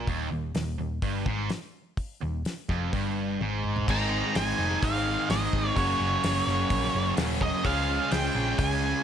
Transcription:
0.07 D#1 D#2, kick, open hi-hat
0.31 D#1 D#2
0.55 D#1 D#2, snare, open hi-hat
0.79 D#1 D#2
1.02 G1 G2, kick, open hi-hat
1.26 G#1 G#2, kick
1.49 snare, open hi-hat
1.97 kick, open hi-hat
2.22 D#1 D#2
2.45 snare, open hi-hat
2.69 F1 F2, kick, snare
2.93 G1 G2, kick, open hi-hat
3.41 G#1 G#2, high tom
3.64 mid tom
3.76 floor tom
3.87 G#1 G#2 D#3 G#3 C4 D#4 G#4 A#5, kick, crash
4.23 G#3 C4 D#4 G#4
4.35 G#1 G#2 D#3 G#3 C4 D#4 G#4 G#5, snare, open hi-hat
4.58 F1 G#2 D#3 G#3 C4 D#4
4.70 G#3 C4 D#4 G#4
4.83 G#1 F5, kick, open hi-hat
4.93 G#3 C4 D#4 G#4
5.05 G#3 C4 D#4 G#4
5.29 G#1 G#2 D#3 G#3 C4 D#4 G#4 D#5, snare, open hi-hat
5.52 G#1 G#3 C4 D#4 G#4, kick
5.63 G#3 C4 D#4 G#4
5.75 F#1 F#2 C#3 F#3 A#3 C#4 F#4 G#4 C#5, kick, open hi-hat
6.00 F#1
6.11 A#3 C#4 G#4
6.23 F#1 F#3 A#3 C#4 G#4, snare, open hi-hat
6.47 F#1 F#2 C#3 F#3 A#3 C#4 F#4, snare
6.58 A#3 C#4 G#4
6.70 A#1, kick, open hi-hat
6.82 A#3 C#4 G#4
6.92 F#1 F#3 A#3 C#4 G#4
7.17 D#1 F#2 C#3 F#3 A#3 C#4 F#4 G#4, snare, open hi-hat
7.40 F#3 A#3 C#4 G#4 D#5, kick
7.52 A#3 C#4 G#4
7.63 C#2 C#3 F3 G#3 C#4 F4 G#4 F5, kick, open hi-hat
7.99 G#3 C#4 G#4
8.10 C#2 C#3 F3 G#3 C#4 G#4 G5, snare, open hi-hat
8.35 A#1 C#3 G#3 C#4 F4 G#4
8.46 G#3 C#4 G#4
8.59 C#2 G#5, kick, open hi-hat
8.70 G#3 C#4 G#4
8.81 F3 G#3 C#4 G#4
8.94 G#3 C#4 G#4

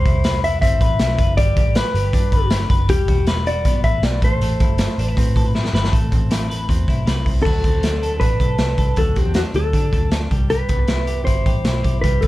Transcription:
Already playing: G3 B4 C5
0.06 C2 E4, kick, closed hi-hat
0.24 B4, snare, closed hi-hat
0.44 E4 E5, closed hi-hat
0.61 G1 C4 E5, kick, closed hi-hat
0.81 A1 B4, kick, closed hi-hat
0.99 B1 E4, snare, closed hi-hat
1.18 F#1 B4, kick, closed hi-hat
1.37 G1 G3 D5, kick, closed hi-hat
1.57 G4, kick, closed hi-hat
1.66 A1
1.75 B4, snare, closed hi-hat
1.94 G1 G4, closed hi-hat
2.13 G2 D4, kick, closed hi-hat
2.32 G1 B4, kick, closed hi-hat
2.50 G4, snare, closed hi-hat
2.70 F#1 B4, kick, closed hi-hat
2.89 E1 G3 G4, kick, closed hi-hat
3.08 E1 F#4, kick, closed hi-hat
3.27 B4, snare, closed hi-hat
3.47 F#4 D5, closed hi-hat
3.65 B1 B3, kick, closed hi-hat
3.84 A1 B4 E5, kick, closed hi-hat
4.03 B1 F#4 D5, snare, closed hi-hat
4.22 A1 A3 C5, kick, closed hi-hat
4.41 A1 A3, closed hi-hat
4.60 E4, kick, closed hi-hat
4.69 G1
4.78 snare, closed hi-hat
4.98 A1 D4, closed hi-hat
5.07 E4 B4
5.17 A2 C4, kick, closed hi-hat
5.36 A2 A4, kick, closed hi-hat
5.46 B4
5.55 E4, snare
5.65 snare
5.73 G1 B4, snare
5.85 snare
5.92 A1 A3, kick, closed hi-hat
6.12 A1 C4, kick, closed hi-hat
6.31 E4, snare, closed hi-hat
6.50 B4, closed hi-hat
6.69 E2 C4, kick, closed hi-hat
6.88 B1 E4, kick, closed hi-hat
7.06 C2 B4, snare, closed hi-hat
7.26 C2 C4, kick, open hi-hat
7.42 D2 F#3 A4, kick, crash
7.64 D2 C4, kick, closed hi-hat
7.83 D4, snare, closed hi-hat
8.03 A4, closed hi-hat
8.20 A1 D4 B4, kick, closed hi-hat
8.40 B1 A4, kick, closed hi-hat
8.58 C2 D4, snare, closed hi-hat
8.78 C2 A4, kick, closed hi-hat
8.96 D2 F#3 A4, kick, closed hi-hat
9.16 C4 G4, kick, closed hi-hat
9.26 E2
9.34 D4 F#4, snare, closed hi-hat
9.54 D2 A4, closed hi-hat
9.73 D3 D4, kick, closed hi-hat
9.93 D2 A4, kick, closed hi-hat
10.11 D4, snare, closed hi-hat
10.31 C2 G3, kick, closed hi-hat
10.50 G3 B4, closed hi-hat
10.69 C2 B3, kick, closed hi-hat
10.88 E4, snare, closed hi-hat
11.07 G4, closed hi-hat
11.25 G1 E4 C5, kick, closed hi-hat
11.46 A1 G4, kick, closed hi-hat
11.65 B1 E4, snare, closed hi-hat
11.84 B1 G4, kick, closed hi-hat
12.01 C2 G3 B4, kick, closed hi-hat
12.21 B3 A4, kick, closed hi-hat

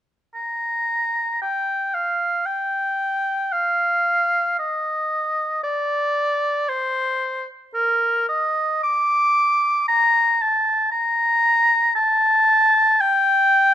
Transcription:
0.34 A#5
1.41 G5
1.94 F5
2.46 G5
3.52 F5
4.59 D#5
5.63 D5
6.69 C5
7.74 A#4
8.29 D#5
8.83 D6
9.88 A#5
10.42 A5
10.91 A#5
11.95 A5
13.01 G5

